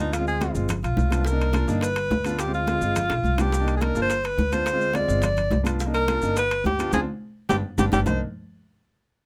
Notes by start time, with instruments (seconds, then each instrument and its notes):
Already playing: upright bass D2, grand piano B3 D4 F4
0.00 alto saxophone D#4
0.13 alto saxophone F4, high bongo, high conga, high timbale, maracas
0.18 grand piano G#3 C4 F4
0.27 alto saxophone G#4, high conga, maracas
0.40 grand piano G#3 C4 F4, high bongo, high conga, high timbale, maracas
0.54 upright bass G1, grand piano G#3 C4 F4, high bongo, high conga, maracas
0.69 high bongo, high conga, low conga, high timbale, maracas
0.83 upright bass B1, alto saxophone F4, high bongo, high conga, high timbale, maracas
0.97 upright bass C2, high bongo, low bongo, high conga, maracas
1.10 grand piano B3 D4 F4, high bongo, high conga, high timbale, maracas
1.25 alto saxophone A#4, high bongo, high conga, maracas
1.31 grand piano A#3 D4 D#4
1.39 high conga, high timbale, maracas
1.53 grand piano A#3 D4 F4, high bongo, high conga, high timbale, maracas
1.67 upright bass G1, grand piano A#3 D4 D#4, high bongo, maracas
1.81 alto saxophone B4, high bongo, high conga, high timbale, maracas
1.96 high bongo, high conga, high timbale, maracas
2.10 upright bass D2, high bongo, low bongo, high conga, low timbale, maracas
2.24 grand piano B3 D4 F4, high bongo, high timbale, maracas
2.39 alto saxophone G4, high bongo, high timbale, maracas
2.46 grand piano G#3 C4 F4
2.53 alto saxophone F4, high conga, maracas
2.67 grand piano G#3 C4 F4, high bongo, high conga, high timbale, maracas
2.81 upright bass G1, grand piano G#3 C4 F4, high bongo, high conga, maracas
2.96 high bongo, high conga, low conga, high timbale, maracas
3.10 upright bass B1, high bongo, high conga, high timbale, maracas
3.23 upright bass C2, high conga, maracas
3.38 grand piano B3 D4 F4, alto saxophone G4, low bongo, high conga, high timbale, maracas
3.52 high bongo, high conga, maracas
3.60 grand piano A#3 D4 D#4
3.68 high timbale, maracas
3.77 grand piano A#3, alto saxophone G#4
3.81 grand piano D4 D#4, alto saxophone A#4, high bongo, high conga, high timbale, maracas
3.95 upright bass G1, grand piano A#3 D4 F4, high bongo, maracas
4.02 alto saxophone C5
4.10 high bongo, high conga, high timbale, maracas
4.23 alto saxophone B4, high bongo, high conga, high timbale, maracas
4.38 upright bass D2, high bongo, low bongo, high conga, maracas
4.52 grand piano B3 D4 F4, alto saxophone C5, high bongo, high conga, high timbale, maracas
4.66 high bongo, high conga, high timbale, maracas
4.73 grand piano G#3 C4 F4
4.81 high conga, maracas
4.93 grand piano G#3 C4 F4, alto saxophone D5, high bongo, high conga, high timbale, maracas
5.08 upright bass G1, grand piano G#3 C4 F4, high bongo, high conga, maracas
5.22 alto saxophone D5, high bongo, high conga, low conga, high timbale, maracas
5.37 high bongo, high conga, low conga, high timbale, maracas
5.50 upright bass C2, high bongo, low bongo, high conga, low timbale, maracas
5.63 grand piano B3 D4 F4, high bongo, high conga, high timbale, maracas
5.79 high bongo, high conga, maracas
5.86 grand piano A#3 D4 D#4
5.94 alto saxophone A#4, high conga, high timbale, maracas
6.08 grand piano A#3 D4 F4, high bongo, high conga, high timbale, maracas
6.22 upright bass G1, grand piano A#3 D4 D#4, high bongo, maracas
6.36 alto saxophone B4, high bongo, high conga, high timbale, maracas
6.51 high bongo, high conga, high timbale, maracas
6.64 upright bass D2, alto saxophone G4, high bongo, low bongo, high conga, low timbale, maracas
6.78 grand piano B3 D4 F4, high bongo, high timbale, maracas
6.93 upright bass D2, grand piano C4 D4 F4, alto saxophone G#4, low bongo, high conga, high timbale, maracas
7.49 upright bass G1, grand piano G3 B3 D4, alto saxophone G4, low bongo, high conga, high timbale, maracas
7.78 upright bass G1, grand piano G3 B3 D4, alto saxophone G4, low bongo, high conga, high timbale, maracas
7.92 upright bass G1, grand piano G3 B3 D4, alto saxophone G4, low bongo, high conga, high timbale, maracas
8.06 upright bass C2, grand piano A#3 D4 D#4, alto saxophone C5, low bongo, low conga, low timbale, maracas